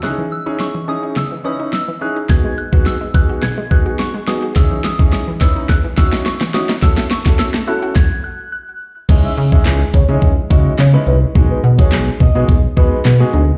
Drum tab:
CC |----------------|----------------|----------------|----------------|
HH |----------------|x-x-x-x-x-x-x-x-|x-x-x-x-x-x-x-x-|x-x-x-xx--------|
CP |----------------|----------------|----------------|----------------|
SD |o---o---o---o---|o---o---o---o-o-|o-o-o-o-o-oooooo|oooooo--o-------|
BD |----------------|o--o--o---o-----|o--o--o-o-o-----|o--o----o-------|

CC |x---------------|----------------|
HH |x-x-x-xxx-x-x-x-|x-x-x-xxx-x-x-x-|
CP |----x-------x---|----x-------x---|
SD |----o-------o---|----o-------o---|
BD |o--o--o-o-o-----|o--o--o-o-o-----|